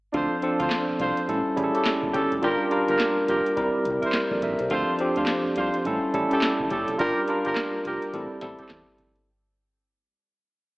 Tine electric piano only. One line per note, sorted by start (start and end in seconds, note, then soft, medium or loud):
0.14 0.35 F3 medium
0.14 0.35 C4 medium
0.14 0.36 D4 medium
0.14 0.36 A4 medium
0.42 1.23 F3 medium
0.42 1.23 C4 medium
0.42 1.23 D4 medium
0.42 1.23 A4 medium
1.28 1.52 G3 medium
1.28 1.52 C#4 medium
1.28 1.52 E4 medium
1.28 1.53 A4 medium
1.56 2.16 G3 medium
1.56 2.16 C#4 medium
1.56 2.16 E4 medium
1.56 1.65 G#4 medium
1.64 2.20 A4 medium
2.42 2.64 G3 medium
2.42 2.64 D4 medium
2.42 2.64 F4 medium
2.42 2.65 A#4 medium
2.71 3.51 G3 medium
2.71 3.51 D4 medium
2.71 3.52 F4 medium
2.71 3.52 A#4 medium
3.56 3.81 G3 medium
3.56 3.81 C4 medium
3.56 3.81 E4 medium
3.56 3.81 A#4 medium
4.31 4.42 A4 medium
4.31 4.42 D5 medium
4.43 4.59 A#4 medium
4.43 4.59 E5 medium
4.60 4.87 G4 medium
4.60 4.87 C5 medium
4.71 4.92 F3 medium
4.71 4.92 C4 medium
4.71 4.93 D4 medium
4.71 4.93 A4 medium
5.00 5.80 F3 medium
5.00 5.80 C4 medium
5.00 5.80 D4 medium
5.00 5.81 G4 medium
5.85 6.09 G3 medium
5.85 6.10 C#4 medium
5.85 6.10 E4 medium
5.85 6.10 A4 medium
6.14 6.73 G3 medium
6.14 6.73 C#4 medium
6.14 6.74 E4 medium
6.14 6.74 A4 medium
7.00 7.21 G3 medium
7.00 7.21 D4 medium
7.00 7.22 F4 medium
7.00 7.22 A#4 medium
7.28 8.08 G3 medium
7.28 8.09 D4 medium
7.28 8.09 F4 medium
7.28 8.09 A#4 medium
8.13 8.37 G3 medium
8.13 8.38 C4 medium
8.13 8.38 E4 medium
8.13 8.38 A4 medium
8.41 9.01 G3 medium
8.41 9.02 C4 medium
8.41 9.02 E4 medium
8.41 9.02 A4 medium